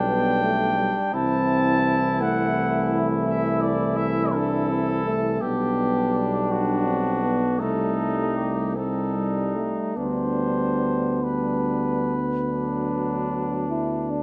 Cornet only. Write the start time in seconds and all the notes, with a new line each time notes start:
Already playing: G5
1.14 A5
2.21 F#5
3.27 E5
3.61 D5
3.97 E5
4.33 A4
5.41 G4
6.51 F#4
7.59 A4
8.36 G4
8.76 A4
9.98 C5
11.23 B4